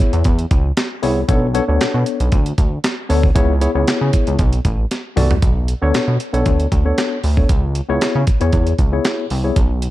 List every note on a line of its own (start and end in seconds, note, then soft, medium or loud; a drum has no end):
0.00 0.25 B3 medium
0.00 0.25 E4 medium
0.00 0.25 G#4 medium
0.00 0.25 C#5 medium
0.00 kick loud
0.13 0.23 E2 loud
0.13 closed hi-hat medium
0.24 0.46 E2 medium
0.24 kick loud
0.24 closed hi-hat medium
0.39 closed hi-hat soft
0.51 0.72 C#2 medium
0.51 kick loud
0.51 closed hi-hat medium
0.77 snare loud
0.77 clap medium
0.77 closed hi-hat medium
1.02 1.24 C2 medium
1.02 1.19 B3 medium
1.02 1.19 E4 medium
1.02 1.20 G#4 medium
1.02 1.20 C#5 medium
1.02 open hi-hat medium
1.28 1.60 B1 loud
1.28 1.45 B3 loud
1.28 1.45 D4 medium
1.28 1.45 A4 loud
1.28 1.46 C#5 loud
1.28 kick loud
1.28 closed hi-hat loud
1.54 1.63 B3 loud
1.54 1.63 D4 medium
1.54 1.63 A4 medium
1.54 1.63 C#5 loud
1.54 closed hi-hat medium
1.68 1.78 D2 medium
1.68 2.32 B3 medium
1.68 2.32 D4 medium
1.68 2.32 A4 medium
1.68 2.32 C#5 medium
1.81 1.86 B2 medium
1.81 snare loud
1.81 clap medium
1.81 closed hi-hat medium
1.94 2.04 B2 medium
2.06 closed hi-hat medium
2.20 2.30 B1 medium
2.20 closed hi-hat medium
2.32 2.53 D2 loud
2.32 kick loud
2.32 closed hi-hat medium
2.46 closed hi-hat medium
2.58 2.79 D2 medium
2.58 kick medium
2.58 closed hi-hat medium
2.84 snare loud
2.84 clap medium
2.84 closed hi-hat medium
3.09 3.31 D2 medium
3.09 3.26 B3 medium
3.09 3.26 D4 medium
3.09 3.26 A4 medium
3.09 3.27 C#5 loud
3.09 open hi-hat medium
3.23 kick loud
3.35 3.67 C#2 loud
3.35 3.52 B3 loud
3.35 3.52 E4 medium
3.35 3.52 G#4 medium
3.35 3.52 C#5 loud
3.35 kick loud
3.35 closed hi-hat loud
3.61 3.70 B3 medium
3.61 3.70 E4 medium
3.61 3.70 G#4 medium
3.61 3.70 C#5 loud
3.61 closed hi-hat medium
3.75 3.85 C#2 medium
3.75 4.39 B3 medium
3.75 4.39 E4 medium
3.75 4.39 G#4 medium
3.75 4.39 C#5 medium
3.88 3.93 C#3 soft
3.88 snare loud
3.88 clap medium
3.88 closed hi-hat medium
4.01 4.11 C#3 loud
4.13 kick medium
4.13 closed hi-hat medium
4.27 4.37 C#2 medium
4.27 closed hi-hat medium
4.39 4.60 B1 loud
4.39 kick loud
4.39 closed hi-hat medium
4.53 closed hi-hat medium
4.65 4.86 A1 loud
4.65 kick medium
4.65 closed hi-hat medium
4.91 snare medium
4.91 closed hi-hat medium
5.16 5.38 C2 medium
5.16 5.33 B3 medium
5.16 5.33 F#4 medium
5.16 5.33 A4 medium
5.16 5.34 D5 medium
5.16 mid tom loud
5.16 open hi-hat medium
5.31 floor tom medium
5.42 5.74 B1 loud
5.42 kick loud
5.42 closed hi-hat loud
5.68 closed hi-hat medium
5.82 5.92 D2 loud
5.82 6.14 B3 loud
5.82 6.14 D4 medium
5.82 6.14 A4 medium
5.82 6.14 C#5 loud
5.94 6.00 B2 soft
5.94 snare loud
5.94 clap medium
5.94 closed hi-hat medium
6.08 6.18 B2 loud
6.20 closed hi-hat medium
6.33 6.43 B1 medium
6.33 6.65 B3 medium
6.33 6.66 D4 medium
6.33 6.66 A4 medium
6.33 6.66 C#5 medium
6.33 closed hi-hat medium
6.46 6.67 D2 loud
6.46 kick medium
6.46 closed hi-hat medium
6.60 closed hi-hat medium
6.72 6.93 D2 medium
6.72 kick medium
6.72 closed hi-hat medium
6.85 7.17 B3 medium
6.85 7.17 D4 medium
6.85 7.17 A4 medium
6.85 7.18 C#5 loud
6.98 snare loud
6.98 clap medium
6.98 closed hi-hat medium
7.24 7.44 D2 loud
7.24 open hi-hat medium
7.37 7.49 B3 medium
7.37 7.49 D4 medium
7.37 7.49 A4 medium
7.37 7.50 C#5 medium
7.37 kick loud
7.49 7.81 C#2 loud
7.49 kick loud
7.49 closed hi-hat loud
7.75 closed hi-hat medium
7.89 7.99 C#2 loud
7.89 8.21 B3 loud
7.89 8.21 E4 medium
7.89 8.21 G#4 medium
7.89 8.21 C#5 loud
8.01 8.07 C#3 medium
8.01 snare loud
8.01 clap medium
8.01 closed hi-hat medium
8.15 8.25 C#3 loud
8.27 kick medium
8.27 closed hi-hat medium
8.40 8.51 E2 medium
8.40 8.73 B3 medium
8.40 8.73 E4 medium
8.40 8.73 G#4 medium
8.40 8.73 C#5 loud
8.40 closed hi-hat medium
8.52 8.74 E2 medium
8.52 kick loud
8.52 closed hi-hat medium
8.67 closed hi-hat medium
8.78 9.00 C#2 medium
8.78 kick medium
8.78 closed hi-hat medium
8.92 9.24 B3 medium
8.92 9.24 E4 medium
8.92 9.25 G#4 medium
8.92 9.25 C#5 medium
9.05 snare loud
9.05 clap medium
9.05 closed hi-hat medium
9.30 9.51 C2 loud
9.30 open hi-hat medium
9.44 9.56 B3 medium
9.44 9.56 E4 medium
9.44 9.56 G#4 medium
9.44 9.56 C#5 medium
9.56 9.88 B1 loud
9.56 kick loud
9.56 closed hi-hat loud
9.82 closed hi-hat medium